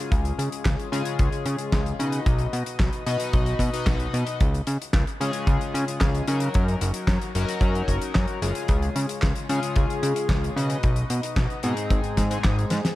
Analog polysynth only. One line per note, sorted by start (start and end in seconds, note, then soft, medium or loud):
0.00 0.89 C#3 medium
0.00 0.89 G#3 medium
0.00 0.89 C#4 medium
0.00 0.89 F4 medium
0.00 0.89 G#4 medium
0.92 1.96 C#3 loud
0.92 1.96 G#3 medium
0.92 1.96 C#4 medium
0.92 1.96 F4 medium
0.92 1.96 G#4 loud
1.99 3.03 B2 medium
1.99 3.03 D#4 medium
1.99 3.03 F#4 medium
1.99 3.03 B4 medium
1.99 3.03 D#5 medium
3.06 3.71 B2 loud
3.06 3.71 D#4 medium
3.06 3.71 F#4 medium
3.06 3.71 B4 medium
3.06 3.71 D#5 loud
3.73 4.39 B2 medium
3.73 4.39 D#4 medium
3.73 4.39 F#4 medium
3.73 4.39 B4 medium
3.73 4.39 D#5 loud
5.21 6.25 C#3 loud
5.21 6.25 G#3 medium
5.21 6.25 C#4 medium
5.21 6.25 F4 medium
5.21 6.25 G#4 loud
6.28 7.32 F#3 medium
6.28 7.32 C#4 medium
6.28 7.32 D#4 medium
6.28 7.32 F#4 medium
6.28 7.32 A#4 medium
7.35 8.39 F#3 loud
7.35 8.39 C#4 medium
7.35 8.39 D#4 medium
7.35 8.39 F#4 medium
7.35 8.39 A#4 loud
8.42 9.46 C#3 medium
8.42 9.46 G#3 medium
8.42 9.46 C#4 medium
8.42 9.46 F4 medium
8.42 9.46 G#4 medium
9.49 10.53 C#3 loud
9.49 10.53 G#3 medium
9.49 10.53 C#4 medium
9.49 10.53 F4 medium
9.49 10.53 G#4 loud
10.56 11.60 B2 medium
10.56 11.60 D#4 medium
10.56 11.60 F#4 medium
10.56 11.60 B4 medium
10.56 11.60 D#5 medium
11.64 12.28 G#2 loud
11.64 12.28 G#3 medium
11.64 12.28 C4 medium
11.64 12.28 D#4 medium
11.64 12.28 G#4 loud
12.31 12.95 G#2 medium
12.31 12.95 G#3 medium
12.31 12.95 C4 medium
12.31 12.95 D#4 medium
12.31 12.95 G#4 loud